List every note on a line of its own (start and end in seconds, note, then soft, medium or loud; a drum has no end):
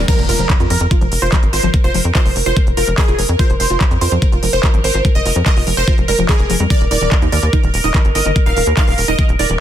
0.08 0.12 F3 medium
0.08 9.60 A#4 medium
0.08 0.19 A#4 loud
0.08 kick loud
0.08 closed hi-hat medium
0.08 crash loud
0.08 impact medium
0.19 0.25 F1 medium
0.19 closed hi-hat soft
0.29 0.36 F1 loud
0.29 0.35 F4 medium
0.29 0.51 A#4 loud
0.29 open hi-hat loud
0.39 0.46 F1 medium
0.39 0.43 F3 medium
0.39 closed hi-hat soft
0.50 kick loud
0.50 clap loud
0.50 closed hi-hat medium
0.60 0.67 F2 medium
0.60 0.66 F4 medium
0.60 closed hi-hat soft
0.70 0.77 F2 loud
0.70 0.74 F3 medium
0.70 0.82 A#4 medium
0.70 open hi-hat loud
0.81 0.88 F2 medium
0.81 closed hi-hat soft
0.91 0.97 F4 medium
0.91 kick loud
0.91 closed hi-hat medium
1.01 1.08 F1 medium
1.01 1.05 F3 medium
1.01 closed hi-hat soft
1.12 1.19 F1 loud
1.12 open hi-hat loud
1.22 1.29 F1 medium
1.22 1.28 F4 medium
1.22 1.39 C5 medium
1.22 closed hi-hat soft
1.32 1.36 F3 medium
1.32 kick loud
1.32 clap loud
1.32 closed hi-hat medium
1.43 1.50 G#1 medium
1.43 closed hi-hat soft
1.53 1.60 G#1 loud
1.53 1.59 F4 medium
1.53 1.70 C5 loud
1.53 open hi-hat loud
1.63 1.70 G#1 medium
1.63 1.67 F3 medium
1.63 closed hi-hat soft
1.74 kick loud
1.74 closed hi-hat medium
1.84 1.91 F1 medium
1.84 1.90 F4 medium
1.84 2.01 C5 loud
1.84 closed hi-hat soft
1.94 2.01 F1 loud
1.94 1.98 F3 medium
1.94 open hi-hat loud
2.05 2.12 F2 medium
2.05 closed hi-hat soft
2.15 2.21 F4 medium
2.15 2.32 C5 loud
2.15 kick loud
2.15 clap loud
2.15 closed hi-hat medium
2.25 2.32 F1 medium
2.25 2.29 F3 medium
2.25 open hi-hat medium
2.36 2.43 F1 loud
2.36 open hi-hat loud
2.46 2.53 F1 medium
2.46 2.52 F4 medium
2.46 2.63 C5 loud
2.46 closed hi-hat soft
2.56 2.60 F3 medium
2.56 kick loud
2.56 closed hi-hat medium
2.67 2.74 F1 medium
2.67 closed hi-hat soft
2.77 2.84 F1 loud
2.77 2.83 F4 medium
2.77 2.88 A#4 medium
2.77 open hi-hat loud
2.88 2.94 F1 medium
2.88 2.91 F3 medium
2.88 closed hi-hat soft
2.98 3.20 G#4 loud
2.98 kick loud
2.98 clap loud
2.98 closed hi-hat medium
3.08 3.15 F1 medium
3.08 3.14 F4 medium
3.08 closed hi-hat soft
3.19 3.25 F1 loud
3.19 3.22 F3 medium
3.19 open hi-hat loud
3.29 3.36 F2 loud
3.29 closed hi-hat soft
3.39 3.45 F4 medium
3.39 3.50 C5 loud
3.39 kick loud
3.39 closed hi-hat medium
3.50 3.56 F1 medium
3.50 3.53 F3 medium
3.50 closed hi-hat soft
3.60 3.67 F1 loud
3.60 3.82 C5 loud
3.60 open hi-hat loud
3.70 3.77 F1 medium
3.70 3.76 F4 medium
3.70 closed hi-hat soft
3.81 3.84 F3 medium
3.81 kick loud
3.81 clap loud
3.81 closed hi-hat medium
3.91 3.98 F2 medium
3.91 closed hi-hat soft
4.01 4.08 F2 loud
4.01 4.07 F4 medium
4.01 4.12 C5 medium
4.01 open hi-hat loud
4.12 4.19 F2 loud
4.12 4.16 F3 medium
4.12 closed hi-hat soft
4.22 kick loud
4.22 closed hi-hat medium
4.32 4.39 F1 medium
4.32 4.38 F4 medium
4.32 closed hi-hat soft
4.43 4.50 F1 loud
4.43 4.47 F3 medium
4.43 open hi-hat loud
4.53 4.60 F1 medium
4.53 4.70 C5 loud
4.53 closed hi-hat soft
4.63 4.69 F4 medium
4.63 kick loud
4.63 clap loud
4.63 closed hi-hat medium
4.74 4.81 G#1 medium
4.74 4.78 F3 medium
4.74 closed hi-hat soft
4.84 4.91 G#1 loud
4.84 5.01 C5 medium
4.84 open hi-hat loud
4.94 5.01 G#1 medium
4.94 5.00 F4 medium
4.94 closed hi-hat soft
5.05 5.09 F3 medium
5.05 kick loud
5.05 closed hi-hat medium
5.15 5.22 F1 medium
5.15 5.32 D#5 medium
5.15 closed hi-hat soft
5.25 5.32 F1 loud
5.25 5.31 F4 medium
5.25 open hi-hat loud
5.36 5.43 F2 medium
5.36 5.40 F3 medium
5.36 closed hi-hat soft
5.46 5.63 D#5 loud
5.46 kick loud
5.46 clap loud
5.46 closed hi-hat medium
5.56 5.63 F1 medium
5.56 5.62 F4 medium
5.56 open hi-hat medium
5.67 5.74 F1 loud
5.67 5.71 F3 medium
5.67 open hi-hat loud
5.77 5.84 F1 medium
5.77 5.94 C5 loud
5.77 closed hi-hat soft
5.88 5.93 F4 medium
5.88 kick loud
5.88 closed hi-hat medium
5.98 6.05 F1 medium
5.98 6.02 F3 medium
5.98 closed hi-hat soft
6.08 6.15 F1 loud
6.08 6.12 G3 medium
6.08 6.19 A#4 medium
6.08 open hi-hat loud
6.19 6.25 F1 medium
6.19 6.22 F3 loud
6.19 closed hi-hat soft
6.29 6.33 D#3 medium
6.29 6.51 G#4 loud
6.29 kick loud
6.29 clap loud
6.29 closed hi-hat medium
6.39 6.46 F1 medium
6.39 closed hi-hat soft
6.50 6.56 F1 loud
6.50 6.53 F3 medium
6.50 open hi-hat loud
6.60 6.67 F2 medium
6.60 6.64 G3 medium
6.60 closed hi-hat soft
6.70 6.74 D#3 medium
6.70 6.81 D5 loud
6.70 kick loud
6.70 closed hi-hat medium
6.81 6.88 D#1 medium
6.81 closed hi-hat soft
6.91 6.98 D#1 loud
6.91 6.97 D#4 medium
6.91 7.13 D5 loud
6.91 open hi-hat loud
7.01 7.08 D#1 medium
7.01 7.05 D#3 medium
7.01 closed hi-hat soft
7.12 kick loud
7.12 clap loud
7.12 closed hi-hat medium
7.22 7.29 D#2 medium
7.22 7.28 D#4 medium
7.22 closed hi-hat soft
7.32 7.39 D#2 loud
7.32 7.36 D#3 medium
7.32 7.44 D5 medium
7.32 open hi-hat loud
7.43 7.50 D#2 medium
7.43 closed hi-hat soft
7.53 7.59 D#4 medium
7.53 kick loud
7.53 closed hi-hat medium
7.63 7.70 D#1 medium
7.63 7.67 D#3 medium
7.63 closed hi-hat soft
7.74 7.81 D#1 loud
7.74 open hi-hat loud
7.84 7.91 D#1 medium
7.84 7.90 D#4 medium
7.84 8.01 D#5 medium
7.84 closed hi-hat soft
7.94 7.98 D#3 medium
7.94 kick loud
7.94 clap loud
7.94 closed hi-hat medium
8.05 8.12 G1 medium
8.05 closed hi-hat soft
8.15 8.22 G1 loud
8.15 8.21 D#4 medium
8.15 8.32 D#5 loud
8.15 open hi-hat loud
8.25 8.32 G1 medium
8.25 8.29 D#3 medium
8.25 closed hi-hat soft
8.36 kick loud
8.36 closed hi-hat medium
8.46 8.53 D#1 medium
8.46 8.52 D#4 medium
8.46 8.63 F5 medium
8.46 closed hi-hat soft
8.57 8.63 D#1 loud
8.57 8.60 D#3 medium
8.57 open hi-hat loud
8.67 8.74 D#2 medium
8.67 closed hi-hat soft
8.77 8.83 D#4 medium
8.77 8.94 F5 loud
8.77 kick loud
8.77 clap loud
8.77 closed hi-hat medium
8.88 8.94 D#1 medium
8.88 8.91 D#3 medium
8.88 open hi-hat medium
8.98 9.05 D#1 loud
8.98 open hi-hat loud
9.08 9.15 D#1 medium
9.08 9.14 D#4 medium
9.08 9.25 D#5 loud
9.08 closed hi-hat soft
9.19 9.22 D#3 medium
9.19 kick loud
9.19 closed hi-hat medium
9.29 9.36 D#1 medium
9.29 closed hi-hat soft
9.39 9.46 D#1 loud
9.39 9.45 D#4 medium
9.39 9.50 D5 medium
9.39 open hi-hat loud
9.50 9.56 D#1 medium
9.50 9.53 D#3 medium
9.50 closed hi-hat soft